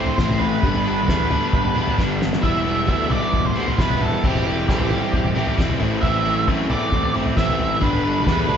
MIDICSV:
0, 0, Header, 1, 5, 480
1, 0, Start_track
1, 0, Key_signature, 1, "minor"
1, 0, Tempo, 449102
1, 671, Time_signature, 4, 2, 24, 8
1, 9162, End_track
2, 0, Start_track
2, 0, Title_t, "Lead electric guitar"
2, 0, Program_c, 0, 29
2, 0, Note_on_c, 0, 72, 81
2, 165, Note_off_c, 0, 72, 0
2, 178, Note_on_c, 0, 72, 75
2, 415, Note_off_c, 0, 72, 0
2, 419, Note_on_c, 0, 71, 79
2, 1128, Note_off_c, 0, 71, 0
2, 1141, Note_on_c, 0, 71, 61
2, 2066, Note_off_c, 0, 71, 0
2, 2595, Note_on_c, 0, 76, 94
2, 3080, Note_off_c, 0, 76, 0
2, 3093, Note_on_c, 0, 76, 85
2, 3322, Note_off_c, 0, 76, 0
2, 3326, Note_on_c, 0, 74, 76
2, 3657, Note_off_c, 0, 74, 0
2, 3696, Note_on_c, 0, 72, 77
2, 4023, Note_off_c, 0, 72, 0
2, 4054, Note_on_c, 0, 71, 82
2, 4293, Note_off_c, 0, 71, 0
2, 4302, Note_on_c, 0, 69, 73
2, 4514, Note_off_c, 0, 69, 0
2, 4539, Note_on_c, 0, 67, 78
2, 5005, Note_off_c, 0, 67, 0
2, 5017, Note_on_c, 0, 67, 67
2, 5926, Note_off_c, 0, 67, 0
2, 6427, Note_on_c, 0, 76, 95
2, 6879, Note_off_c, 0, 76, 0
2, 7168, Note_on_c, 0, 74, 83
2, 7610, Note_off_c, 0, 74, 0
2, 7877, Note_on_c, 0, 76, 88
2, 8354, Note_on_c, 0, 71, 85
2, 8370, Note_off_c, 0, 76, 0
2, 9162, Note_off_c, 0, 71, 0
2, 9162, End_track
3, 0, Start_track
3, 0, Title_t, "Overdriven electric guitar"
3, 0, Program_c, 1, 29
3, 0, Note_on_c, 1, 57, 52
3, 0, Note_on_c, 1, 60, 54
3, 0, Note_on_c, 1, 64, 58
3, 190, Note_off_c, 1, 57, 0
3, 197, Note_on_c, 1, 45, 75
3, 200, Note_off_c, 1, 60, 0
3, 200, Note_on_c, 1, 52, 83
3, 203, Note_on_c, 1, 57, 83
3, 204, Note_off_c, 1, 64, 0
3, 212, Note_on_c, 1, 60, 79
3, 217, Note_on_c, 1, 64, 93
3, 661, Note_off_c, 1, 45, 0
3, 662, Note_off_c, 1, 52, 0
3, 663, Note_off_c, 1, 57, 0
3, 668, Note_off_c, 1, 60, 0
3, 670, Note_off_c, 1, 64, 0
3, 678, Note_on_c, 1, 43, 82
3, 678, Note_on_c, 1, 50, 80
3, 685, Note_on_c, 1, 55, 80
3, 694, Note_on_c, 1, 59, 85
3, 697, Note_on_c, 1, 62, 85
3, 904, Note_off_c, 1, 62, 0
3, 917, Note_on_c, 1, 62, 62
3, 923, Note_off_c, 1, 59, 0
3, 928, Note_on_c, 1, 59, 54
3, 933, Note_off_c, 1, 55, 0
3, 937, Note_on_c, 1, 55, 49
3, 1139, Note_off_c, 1, 50, 0
3, 1152, Note_on_c, 1, 50, 63
3, 1156, Note_off_c, 1, 43, 0
3, 1156, Note_off_c, 1, 55, 0
3, 1160, Note_off_c, 1, 62, 0
3, 1160, Note_on_c, 1, 55, 69
3, 1161, Note_off_c, 1, 59, 0
3, 1166, Note_on_c, 1, 59, 61
3, 1172, Note_on_c, 1, 62, 70
3, 1379, Note_off_c, 1, 62, 0
3, 1392, Note_on_c, 1, 62, 65
3, 1396, Note_off_c, 1, 59, 0
3, 1400, Note_on_c, 1, 59, 55
3, 1410, Note_off_c, 1, 55, 0
3, 1414, Note_on_c, 1, 55, 52
3, 1633, Note_off_c, 1, 50, 0
3, 1855, Note_off_c, 1, 62, 0
3, 1862, Note_off_c, 1, 59, 0
3, 1868, Note_on_c, 1, 62, 60
3, 1875, Note_on_c, 1, 59, 51
3, 1884, Note_off_c, 1, 55, 0
3, 1888, Note_on_c, 1, 55, 50
3, 2109, Note_on_c, 1, 43, 84
3, 2110, Note_off_c, 1, 59, 0
3, 2117, Note_off_c, 1, 55, 0
3, 2118, Note_off_c, 1, 62, 0
3, 2118, Note_on_c, 1, 50, 77
3, 2121, Note_on_c, 1, 55, 85
3, 2123, Note_on_c, 1, 59, 83
3, 2131, Note_on_c, 1, 62, 94
3, 2578, Note_off_c, 1, 43, 0
3, 2582, Note_off_c, 1, 50, 0
3, 2585, Note_off_c, 1, 59, 0
3, 2586, Note_on_c, 1, 52, 81
3, 2589, Note_off_c, 1, 62, 0
3, 2592, Note_off_c, 1, 55, 0
3, 2597, Note_on_c, 1, 55, 76
3, 2605, Note_on_c, 1, 59, 82
3, 2609, Note_on_c, 1, 64, 80
3, 2824, Note_off_c, 1, 64, 0
3, 2825, Note_off_c, 1, 59, 0
3, 2829, Note_on_c, 1, 64, 58
3, 2837, Note_on_c, 1, 59, 54
3, 2845, Note_off_c, 1, 55, 0
3, 2850, Note_on_c, 1, 55, 51
3, 3057, Note_off_c, 1, 52, 0
3, 3061, Note_on_c, 1, 52, 67
3, 3063, Note_off_c, 1, 59, 0
3, 3066, Note_off_c, 1, 55, 0
3, 3070, Note_on_c, 1, 55, 69
3, 3076, Note_on_c, 1, 59, 66
3, 3078, Note_off_c, 1, 64, 0
3, 3083, Note_on_c, 1, 64, 69
3, 3299, Note_off_c, 1, 64, 0
3, 3303, Note_on_c, 1, 64, 61
3, 3308, Note_off_c, 1, 59, 0
3, 3320, Note_on_c, 1, 59, 55
3, 3322, Note_off_c, 1, 55, 0
3, 3327, Note_on_c, 1, 55, 50
3, 3794, Note_off_c, 1, 64, 0
3, 3798, Note_on_c, 1, 64, 68
3, 3799, Note_off_c, 1, 59, 0
3, 3811, Note_on_c, 1, 59, 50
3, 3818, Note_off_c, 1, 55, 0
3, 3822, Note_on_c, 1, 55, 54
3, 4038, Note_off_c, 1, 52, 0
3, 4040, Note_off_c, 1, 59, 0
3, 4042, Note_on_c, 1, 52, 82
3, 4047, Note_off_c, 1, 55, 0
3, 4051, Note_on_c, 1, 55, 88
3, 4052, Note_on_c, 1, 59, 88
3, 4059, Note_off_c, 1, 64, 0
3, 4063, Note_on_c, 1, 64, 82
3, 4511, Note_off_c, 1, 59, 0
3, 4519, Note_off_c, 1, 52, 0
3, 4523, Note_on_c, 1, 52, 81
3, 4527, Note_off_c, 1, 55, 0
3, 4531, Note_on_c, 1, 55, 79
3, 4540, Note_on_c, 1, 60, 92
3, 4541, Note_off_c, 1, 64, 0
3, 4546, Note_on_c, 1, 64, 87
3, 4766, Note_off_c, 1, 64, 0
3, 4770, Note_on_c, 1, 64, 61
3, 4777, Note_off_c, 1, 60, 0
3, 4782, Note_on_c, 1, 60, 60
3, 4786, Note_off_c, 1, 55, 0
3, 4790, Note_on_c, 1, 55, 53
3, 5002, Note_off_c, 1, 52, 0
3, 5007, Note_on_c, 1, 52, 61
3, 5009, Note_off_c, 1, 55, 0
3, 5013, Note_on_c, 1, 55, 71
3, 5017, Note_off_c, 1, 60, 0
3, 5020, Note_off_c, 1, 64, 0
3, 5021, Note_on_c, 1, 60, 65
3, 5024, Note_on_c, 1, 64, 71
3, 5240, Note_off_c, 1, 64, 0
3, 5244, Note_on_c, 1, 64, 56
3, 5248, Note_off_c, 1, 60, 0
3, 5253, Note_on_c, 1, 60, 58
3, 5265, Note_off_c, 1, 55, 0
3, 5270, Note_on_c, 1, 55, 50
3, 5709, Note_off_c, 1, 64, 0
3, 5720, Note_off_c, 1, 60, 0
3, 5722, Note_on_c, 1, 64, 64
3, 5733, Note_on_c, 1, 60, 58
3, 5740, Note_off_c, 1, 55, 0
3, 5744, Note_on_c, 1, 55, 49
3, 5957, Note_off_c, 1, 52, 0
3, 5961, Note_on_c, 1, 52, 91
3, 5966, Note_off_c, 1, 55, 0
3, 5966, Note_off_c, 1, 60, 0
3, 5970, Note_on_c, 1, 55, 91
3, 5971, Note_off_c, 1, 64, 0
3, 5979, Note_on_c, 1, 60, 97
3, 5983, Note_on_c, 1, 64, 86
3, 6181, Note_off_c, 1, 64, 0
3, 6186, Note_off_c, 1, 52, 0
3, 6186, Note_off_c, 1, 60, 0
3, 6193, Note_on_c, 1, 64, 80
3, 6199, Note_on_c, 1, 60, 78
3, 6202, Note_off_c, 1, 55, 0
3, 6206, Note_on_c, 1, 57, 68
3, 6209, Note_on_c, 1, 52, 62
3, 6217, Note_on_c, 1, 45, 64
3, 6416, Note_off_c, 1, 45, 0
3, 6426, Note_off_c, 1, 52, 0
3, 6427, Note_off_c, 1, 57, 0
3, 6429, Note_on_c, 1, 45, 90
3, 6438, Note_off_c, 1, 60, 0
3, 6439, Note_on_c, 1, 52, 79
3, 6440, Note_on_c, 1, 57, 87
3, 6442, Note_off_c, 1, 64, 0
3, 6451, Note_on_c, 1, 60, 85
3, 6455, Note_on_c, 1, 64, 93
3, 6664, Note_off_c, 1, 64, 0
3, 6673, Note_off_c, 1, 60, 0
3, 6677, Note_on_c, 1, 64, 59
3, 6678, Note_off_c, 1, 57, 0
3, 6686, Note_on_c, 1, 60, 57
3, 6691, Note_on_c, 1, 57, 49
3, 6903, Note_off_c, 1, 52, 0
3, 6914, Note_off_c, 1, 45, 0
3, 6914, Note_off_c, 1, 57, 0
3, 6916, Note_on_c, 1, 52, 62
3, 6918, Note_off_c, 1, 60, 0
3, 6927, Note_off_c, 1, 64, 0
3, 6927, Note_on_c, 1, 57, 62
3, 6931, Note_on_c, 1, 60, 68
3, 6940, Note_on_c, 1, 64, 73
3, 7143, Note_off_c, 1, 64, 0
3, 7153, Note_off_c, 1, 60, 0
3, 7156, Note_on_c, 1, 64, 58
3, 7165, Note_off_c, 1, 57, 0
3, 7165, Note_on_c, 1, 60, 56
3, 7178, Note_on_c, 1, 57, 57
3, 7397, Note_off_c, 1, 52, 0
3, 7619, Note_off_c, 1, 64, 0
3, 7632, Note_on_c, 1, 64, 59
3, 7633, Note_off_c, 1, 60, 0
3, 7640, Note_off_c, 1, 57, 0
3, 7646, Note_on_c, 1, 60, 58
3, 7653, Note_on_c, 1, 57, 51
3, 7873, Note_off_c, 1, 57, 0
3, 7873, Note_on_c, 1, 45, 81
3, 7877, Note_off_c, 1, 60, 0
3, 7882, Note_off_c, 1, 64, 0
3, 7884, Note_on_c, 1, 52, 94
3, 7885, Note_on_c, 1, 57, 81
3, 7890, Note_on_c, 1, 60, 95
3, 7895, Note_on_c, 1, 64, 101
3, 8340, Note_off_c, 1, 45, 0
3, 8345, Note_off_c, 1, 52, 0
3, 8346, Note_off_c, 1, 57, 0
3, 8348, Note_off_c, 1, 60, 0
3, 8351, Note_off_c, 1, 64, 0
3, 8352, Note_on_c, 1, 43, 83
3, 8360, Note_on_c, 1, 55, 80
3, 8363, Note_on_c, 1, 50, 86
3, 8366, Note_on_c, 1, 59, 91
3, 8374, Note_on_c, 1, 62, 96
3, 8584, Note_off_c, 1, 62, 0
3, 8592, Note_off_c, 1, 59, 0
3, 8596, Note_on_c, 1, 62, 62
3, 8603, Note_off_c, 1, 55, 0
3, 8605, Note_on_c, 1, 59, 54
3, 8616, Note_on_c, 1, 55, 47
3, 8821, Note_off_c, 1, 50, 0
3, 8829, Note_off_c, 1, 55, 0
3, 8833, Note_off_c, 1, 43, 0
3, 8834, Note_on_c, 1, 50, 64
3, 8837, Note_off_c, 1, 59, 0
3, 8842, Note_on_c, 1, 55, 63
3, 8845, Note_off_c, 1, 62, 0
3, 8850, Note_on_c, 1, 59, 74
3, 8858, Note_on_c, 1, 62, 65
3, 9054, Note_off_c, 1, 62, 0
3, 9066, Note_off_c, 1, 59, 0
3, 9067, Note_on_c, 1, 62, 62
3, 9076, Note_off_c, 1, 55, 0
3, 9079, Note_on_c, 1, 59, 54
3, 9089, Note_on_c, 1, 55, 52
3, 9162, Note_off_c, 1, 50, 0
3, 9162, Note_off_c, 1, 55, 0
3, 9162, Note_off_c, 1, 59, 0
3, 9162, Note_off_c, 1, 62, 0
3, 9162, End_track
4, 0, Start_track
4, 0, Title_t, "Picked electric bass"
4, 0, Program_c, 2, 34
4, 196, Note_on_c, 2, 33, 90
4, 589, Note_off_c, 2, 33, 0
4, 675, Note_on_c, 2, 31, 90
4, 1158, Note_off_c, 2, 31, 0
4, 1158, Note_on_c, 2, 40, 88
4, 1390, Note_off_c, 2, 40, 0
4, 1390, Note_on_c, 2, 38, 73
4, 1490, Note_off_c, 2, 38, 0
4, 1636, Note_on_c, 2, 31, 82
4, 1833, Note_off_c, 2, 31, 0
4, 1873, Note_on_c, 2, 28, 74
4, 1972, Note_off_c, 2, 28, 0
4, 2121, Note_on_c, 2, 31, 86
4, 2514, Note_off_c, 2, 31, 0
4, 2600, Note_on_c, 2, 28, 85
4, 3083, Note_off_c, 2, 28, 0
4, 3083, Note_on_c, 2, 38, 83
4, 3321, Note_off_c, 2, 38, 0
4, 3321, Note_on_c, 2, 35, 83
4, 3418, Note_off_c, 2, 35, 0
4, 3563, Note_on_c, 2, 28, 87
4, 3758, Note_off_c, 2, 28, 0
4, 3805, Note_on_c, 2, 38, 73
4, 3901, Note_off_c, 2, 38, 0
4, 4044, Note_on_c, 2, 28, 88
4, 4436, Note_off_c, 2, 28, 0
4, 4527, Note_on_c, 2, 28, 84
4, 5005, Note_off_c, 2, 28, 0
4, 5005, Note_on_c, 2, 33, 86
4, 5254, Note_off_c, 2, 33, 0
4, 5254, Note_on_c, 2, 31, 82
4, 5347, Note_off_c, 2, 31, 0
4, 5486, Note_on_c, 2, 28, 83
4, 5680, Note_off_c, 2, 28, 0
4, 5727, Note_on_c, 2, 33, 81
4, 5823, Note_off_c, 2, 33, 0
4, 5969, Note_on_c, 2, 28, 85
4, 6162, Note_off_c, 2, 28, 0
4, 6213, Note_on_c, 2, 33, 85
4, 6922, Note_off_c, 2, 33, 0
4, 6922, Note_on_c, 2, 42, 89
4, 7165, Note_off_c, 2, 42, 0
4, 7165, Note_on_c, 2, 40, 79
4, 7261, Note_off_c, 2, 40, 0
4, 7398, Note_on_c, 2, 33, 91
4, 7595, Note_off_c, 2, 33, 0
4, 7647, Note_on_c, 2, 31, 79
4, 7742, Note_off_c, 2, 31, 0
4, 7876, Note_on_c, 2, 33, 89
4, 8270, Note_off_c, 2, 33, 0
4, 8357, Note_on_c, 2, 31, 89
4, 8832, Note_off_c, 2, 31, 0
4, 8832, Note_on_c, 2, 40, 86
4, 9067, Note_off_c, 2, 40, 0
4, 9067, Note_on_c, 2, 38, 79
4, 9162, Note_off_c, 2, 38, 0
4, 9162, End_track
5, 0, Start_track
5, 0, Title_t, "Drums"
5, 69, Note_on_c, 9, 43, 78
5, 176, Note_off_c, 9, 43, 0
5, 190, Note_on_c, 9, 47, 64
5, 193, Note_on_c, 9, 36, 86
5, 202, Note_on_c, 9, 38, 67
5, 297, Note_off_c, 9, 47, 0
5, 300, Note_off_c, 9, 36, 0
5, 309, Note_off_c, 9, 38, 0
5, 316, Note_on_c, 9, 43, 62
5, 316, Note_on_c, 9, 47, 72
5, 423, Note_off_c, 9, 43, 0
5, 423, Note_off_c, 9, 47, 0
5, 437, Note_on_c, 9, 43, 73
5, 544, Note_off_c, 9, 43, 0
5, 676, Note_on_c, 9, 36, 99
5, 676, Note_on_c, 9, 43, 75
5, 783, Note_off_c, 9, 36, 0
5, 783, Note_off_c, 9, 43, 0
5, 800, Note_on_c, 9, 43, 63
5, 907, Note_off_c, 9, 43, 0
5, 1157, Note_on_c, 9, 36, 88
5, 1167, Note_on_c, 9, 38, 71
5, 1264, Note_off_c, 9, 36, 0
5, 1274, Note_off_c, 9, 38, 0
5, 1282, Note_on_c, 9, 43, 71
5, 1389, Note_off_c, 9, 43, 0
5, 1396, Note_on_c, 9, 43, 78
5, 1396, Note_on_c, 9, 47, 69
5, 1503, Note_off_c, 9, 43, 0
5, 1503, Note_off_c, 9, 47, 0
5, 1639, Note_on_c, 9, 36, 100
5, 1639, Note_on_c, 9, 43, 75
5, 1746, Note_off_c, 9, 36, 0
5, 1746, Note_off_c, 9, 43, 0
5, 1762, Note_on_c, 9, 43, 70
5, 1869, Note_off_c, 9, 43, 0
5, 1882, Note_on_c, 9, 47, 67
5, 1989, Note_off_c, 9, 47, 0
5, 2004, Note_on_c, 9, 43, 80
5, 2111, Note_off_c, 9, 43, 0
5, 2121, Note_on_c, 9, 36, 92
5, 2134, Note_on_c, 9, 38, 51
5, 2227, Note_off_c, 9, 36, 0
5, 2240, Note_off_c, 9, 38, 0
5, 2371, Note_on_c, 9, 38, 75
5, 2478, Note_off_c, 9, 38, 0
5, 2490, Note_on_c, 9, 38, 77
5, 2593, Note_on_c, 9, 43, 72
5, 2597, Note_off_c, 9, 38, 0
5, 2600, Note_on_c, 9, 36, 95
5, 2700, Note_off_c, 9, 43, 0
5, 2706, Note_off_c, 9, 36, 0
5, 3082, Note_on_c, 9, 36, 100
5, 3189, Note_off_c, 9, 36, 0
5, 3317, Note_on_c, 9, 43, 75
5, 3317, Note_on_c, 9, 47, 72
5, 3424, Note_off_c, 9, 43, 0
5, 3424, Note_off_c, 9, 47, 0
5, 3559, Note_on_c, 9, 43, 77
5, 3564, Note_on_c, 9, 36, 94
5, 3666, Note_off_c, 9, 43, 0
5, 3671, Note_off_c, 9, 36, 0
5, 3687, Note_on_c, 9, 43, 69
5, 3794, Note_off_c, 9, 43, 0
5, 3930, Note_on_c, 9, 43, 79
5, 4037, Note_off_c, 9, 43, 0
5, 4046, Note_on_c, 9, 36, 96
5, 4047, Note_on_c, 9, 47, 73
5, 4059, Note_on_c, 9, 38, 64
5, 4153, Note_off_c, 9, 36, 0
5, 4154, Note_off_c, 9, 47, 0
5, 4166, Note_off_c, 9, 38, 0
5, 4170, Note_on_c, 9, 43, 71
5, 4170, Note_on_c, 9, 47, 68
5, 4276, Note_off_c, 9, 43, 0
5, 4276, Note_off_c, 9, 47, 0
5, 4287, Note_on_c, 9, 43, 75
5, 4393, Note_off_c, 9, 43, 0
5, 4529, Note_on_c, 9, 36, 97
5, 4534, Note_on_c, 9, 43, 83
5, 4636, Note_off_c, 9, 36, 0
5, 4641, Note_off_c, 9, 43, 0
5, 4650, Note_on_c, 9, 43, 70
5, 4757, Note_off_c, 9, 43, 0
5, 5008, Note_on_c, 9, 36, 101
5, 5024, Note_on_c, 9, 38, 69
5, 5115, Note_off_c, 9, 36, 0
5, 5126, Note_on_c, 9, 43, 76
5, 5131, Note_off_c, 9, 38, 0
5, 5233, Note_off_c, 9, 43, 0
5, 5243, Note_on_c, 9, 43, 75
5, 5243, Note_on_c, 9, 47, 72
5, 5349, Note_off_c, 9, 43, 0
5, 5349, Note_off_c, 9, 47, 0
5, 5482, Note_on_c, 9, 43, 74
5, 5487, Note_on_c, 9, 36, 98
5, 5589, Note_off_c, 9, 43, 0
5, 5594, Note_off_c, 9, 36, 0
5, 5608, Note_on_c, 9, 43, 66
5, 5715, Note_off_c, 9, 43, 0
5, 5732, Note_on_c, 9, 47, 68
5, 5839, Note_off_c, 9, 47, 0
5, 5848, Note_on_c, 9, 43, 74
5, 5955, Note_off_c, 9, 43, 0
5, 5968, Note_on_c, 9, 36, 99
5, 5981, Note_on_c, 9, 38, 69
5, 6075, Note_off_c, 9, 36, 0
5, 6087, Note_on_c, 9, 43, 66
5, 6087, Note_on_c, 9, 47, 70
5, 6088, Note_off_c, 9, 38, 0
5, 6194, Note_off_c, 9, 43, 0
5, 6194, Note_off_c, 9, 47, 0
5, 6206, Note_on_c, 9, 43, 79
5, 6313, Note_off_c, 9, 43, 0
5, 6443, Note_on_c, 9, 43, 74
5, 6446, Note_on_c, 9, 36, 100
5, 6549, Note_off_c, 9, 43, 0
5, 6552, Note_off_c, 9, 36, 0
5, 6924, Note_on_c, 9, 36, 96
5, 7031, Note_off_c, 9, 36, 0
5, 7158, Note_on_c, 9, 43, 84
5, 7158, Note_on_c, 9, 47, 68
5, 7265, Note_off_c, 9, 43, 0
5, 7265, Note_off_c, 9, 47, 0
5, 7396, Note_on_c, 9, 43, 78
5, 7400, Note_on_c, 9, 36, 93
5, 7502, Note_off_c, 9, 43, 0
5, 7507, Note_off_c, 9, 36, 0
5, 7513, Note_on_c, 9, 43, 72
5, 7620, Note_off_c, 9, 43, 0
5, 7757, Note_on_c, 9, 43, 78
5, 7864, Note_off_c, 9, 43, 0
5, 7872, Note_on_c, 9, 47, 69
5, 7879, Note_on_c, 9, 36, 90
5, 7884, Note_on_c, 9, 38, 66
5, 7979, Note_off_c, 9, 47, 0
5, 7985, Note_off_c, 9, 36, 0
5, 7990, Note_off_c, 9, 38, 0
5, 7999, Note_on_c, 9, 43, 68
5, 7999, Note_on_c, 9, 47, 63
5, 8106, Note_off_c, 9, 43, 0
5, 8106, Note_off_c, 9, 47, 0
5, 8116, Note_on_c, 9, 43, 73
5, 8223, Note_off_c, 9, 43, 0
5, 8348, Note_on_c, 9, 43, 78
5, 8355, Note_on_c, 9, 36, 100
5, 8455, Note_off_c, 9, 43, 0
5, 8462, Note_off_c, 9, 36, 0
5, 8475, Note_on_c, 9, 43, 71
5, 8582, Note_off_c, 9, 43, 0
5, 8834, Note_on_c, 9, 36, 94
5, 8844, Note_on_c, 9, 38, 67
5, 8941, Note_off_c, 9, 36, 0
5, 8947, Note_on_c, 9, 43, 75
5, 8950, Note_off_c, 9, 38, 0
5, 9054, Note_off_c, 9, 43, 0
5, 9071, Note_on_c, 9, 43, 79
5, 9071, Note_on_c, 9, 47, 72
5, 9162, Note_off_c, 9, 43, 0
5, 9162, Note_off_c, 9, 47, 0
5, 9162, End_track
0, 0, End_of_file